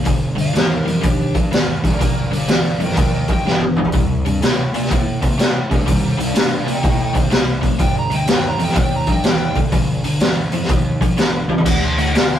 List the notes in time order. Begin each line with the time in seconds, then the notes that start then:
0.05 G1 G2 D3, kick, open hi-hat
0.36 D2 G2 D3, open hi-hat
0.41 D5 F5
0.53 D#2 G2 E3 G4 C5, snare, open hi-hat
0.73 G4 A#4
0.86 F2 G2 E3, open hi-hat
1.01 D#2 G2 F3 D4, kick, open hi-hat
1.07 G4
1.35 G2 F3, kick, open hi-hat
1.51 D#2 G2 E3, snare, open hi-hat
1.83 D2 G2 E3 A#4, kick, open hi-hat
1.88 D5
1.99 A#1 G2 D3 A#4, kick, open hi-hat
2.04 D5
2.16 A#4 D5
2.31 G1 G2 D3 D5, open hi-hat
2.36 D5 F5
2.48 D2 G2 E3 D5, snare, open hi-hat
2.53 F5
2.66 D5 F5
2.80 F2 G2 E3 D#5, open hi-hat
2.84 A#4 G5
2.90 snare
2.97 D#2 G2 F3 A#4 D5, kick, open hi-hat
3.01 G5
3.14 A#4 D#5 G5
3.28 A#1 G2 F3 D#5, kick, open hi-hat
3.33 G5
3.45 G1 G2 E3, snare
3.60 high tom
3.76 A#1 G2 E3, mid tom
3.85 floor tom
3.92 C2 C3 G3, kick, open hi-hat
4.25 G2 C3 G3, open hi-hat
4.42 A2 C3 A3, snare, open hi-hat
4.73 A#2 C3 A3, open hi-hat
4.84 snare
4.91 A2 C3 A#3, kick, open hi-hat
5.22 C3 A#3, kick, open hi-hat
5.38 A2 C3 A3, snare, open hi-hat
5.70 G2 C3 A3, kick, open hi-hat
5.74 D#4 A4 C5
5.86 D#2 C3 G3, kick, open hi-hat
5.92 D#4 G4 C5
6.07 D#4 A4 C5
6.17 C2 C3 G3, open hi-hat
6.25 C5 D5 F5
6.34 G2 C3 A3, snare, open hi-hat
6.41 C5 F5
6.56 C5 D5 F5
6.65 A#2 C3 A3, open hi-hat
6.73 D#5 G5
6.83 A2 C3 A#3, kick, open hi-hat
6.88 D#5 G5
7.02 D#5 G5
7.14 D#2 C3 A#3 A4 C5, kick, open hi-hat
7.31 C2 C3 A3, snare, open hi-hat
7.61 F1 C3 A3, kick, open hi-hat
7.79 G1 G2 D3 D5 G5, kick, open hi-hat
7.96 G5 A#5
8.10 D2 G2 D3 D#5, open hi-hat
8.15 G5
8.27 D#2 G2 E3 D5, snare, open hi-hat
8.31 G5
8.45 G5 A#5
8.58 F2 G2 E3 D#5, open hi-hat
8.64 G5
8.69 snare
8.75 D#2 G2 F3 D5, kick, open hi-hat
8.79 G5
8.92 G5
8.96 A#5
9.06 G2 F3 D#5, kick, open hi-hat
9.12 G5
9.23 D#2 G2 E3 D5, snare, open hi-hat
9.30 G5
9.55 D2 G2 E3, kick, open hi-hat
9.72 A#1 G2 D3, kick, open hi-hat
10.03 G1 G2 D3, open hi-hat
10.20 D2 G2 E3, snare, open hi-hat
10.51 F2 G2 E3, open hi-hat
10.62 snare
10.69 D#2 G2 F3, kick, open hi-hat
11.01 A#1 G2 F3, kick, open hi-hat
11.17 G1 G2 E3, snare, open hi-hat
11.48 C#2 G2 E3, high tom
11.58 floor tom
11.66 D2 D3 A3 D5 F#5, kick, open hi-hat, crash
11.83 A5 C6
11.97 A2 D3 A3 D#5 F#5, open hi-hat
12.14 A#2 D3 B3 D5 F#5, snare, open hi-hat
12.30 A5 C6